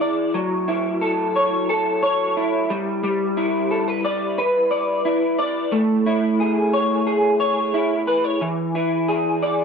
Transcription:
0.00 0.37 E3 medium
0.00 0.67 E4 medium
0.00 0.41 G#4 medium
0.00 0.41 D5 medium
0.34 2.70 F#3 medium
0.68 2.36 E4 medium
1.01 1.68 A4 medium
1.36 2.01 C#5 medium
1.69 2.77 A4 medium
2.03 2.76 C#5 medium
2.37 3.37 E4 soft
2.70 3.02 G3 medium
3.04 5.72 G3 medium
3.37 5.05 E4 medium
3.71 3.88 A4 medium
3.88 4.37 B4 medium
4.05 4.70 D5 medium
4.38 5.79 B4 medium
4.71 5.37 D5 medium
5.05 6.06 E4 medium
5.39 5.79 D5 medium
5.72 8.41 A3 medium
6.06 7.74 E4 medium
6.40 7.06 G#4 soft
6.73 7.39 C#5 medium
7.07 9.08 G#4 medium
7.40 8.07 C#5 medium
7.74 8.75 E4 medium
8.07 8.24 B4 medium
8.24 8.48 C#5 medium
8.41 9.64 E3 medium
8.75 9.64 E4 medium
9.08 9.64 G#4 medium
9.43 9.64 D5 medium

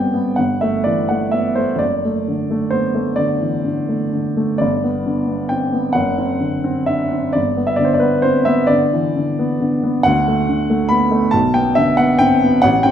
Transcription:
0.00 0.33 G1 medium
0.00 0.40 G3 soft
0.00 0.14 B3 soft
0.00 0.14 C4 soft
0.00 0.40 D5 medium
0.00 0.37 G5 medium
0.14 0.38 B3 medium
0.36 1.78 G1 medium
0.36 0.61 F#5 medium
0.61 1.01 A3 medium
0.61 0.86 E5 medium
0.84 1.25 E3 soft
0.84 1.09 D5 medium
1.09 1.49 A3 soft
1.09 1.34 F#5 medium
1.31 1.58 B3 soft
1.31 1.57 E5 medium
1.55 1.81 A3 soft
1.55 1.80 C5 medium
1.76 4.56 F#1 medium
1.76 2.71 D5 medium
2.05 2.41 A3 soft
2.28 2.64 D3 soft
2.51 2.86 A3 soft
2.70 2.95 B3 soft
2.70 3.17 C5 medium
2.95 3.32 A3 medium
3.16 3.56 D3 soft
3.16 4.57 D5 medium
3.41 3.65 E3 soft
3.65 4.04 D3 soft
3.89 4.28 A3 soft
4.13 4.52 D3 soft
4.37 4.61 A3 soft
4.58 5.91 G1 medium
4.58 5.50 D5 medium
4.84 5.21 B3 soft
5.06 5.43 D3 soft
5.28 5.64 B3 soft
5.49 5.74 C4 soft
5.49 5.95 G5 medium
5.73 5.96 B3 medium
5.93 7.32 F#1 medium
5.93 6.88 F#5 medium
6.18 6.56 C4 medium
6.40 6.80 D3 soft
6.64 7.03 C4 medium
6.86 7.13 D4 soft
6.86 7.34 E5 medium
7.11 7.35 C4 soft
7.33 10.03 G1 medium
7.33 7.67 D5 medium
7.57 7.93 B3 medium
7.67 7.76 E5 medium
7.76 8.16 D3 soft
7.76 7.85 D5 medium
7.85 7.94 C5 medium
7.94 8.03 D5 medium
7.99 8.38 B3 soft
7.99 8.24 B4 medium
8.22 8.48 C4 medium
8.22 8.47 C5 medium
8.45 8.84 B3 medium
8.45 8.70 E5 medium
8.67 9.07 D3 medium
8.67 10.05 D5 medium
8.93 9.17 E3 soft
9.16 9.53 D3 medium
9.39 9.76 B3 medium
9.61 9.97 D3 medium
9.83 10.06 B3 medium
10.03 11.31 D2 medium
10.03 10.91 F#5 loud
10.28 10.63 A3 medium
10.49 10.84 D3 medium
10.70 11.05 A3 medium
10.89 11.13 B3 medium
10.89 11.33 B5 loud
11.11 11.34 A3 medium
11.31 12.59 B1 medium
11.31 11.55 A5 loud
11.54 11.91 B3 medium
11.54 11.77 G5 loud
11.75 12.12 D3 medium
11.75 11.99 E5 loud
11.97 12.34 B3 medium
11.97 12.20 F#5 loud
12.19 12.42 C4 medium
12.19 12.63 G5 loud
12.43 12.64 B3 medium
12.62 12.91 A1 medium
12.62 12.84 F#5 loud
12.83 12.91 C4 medium
12.83 12.91 G5 loud

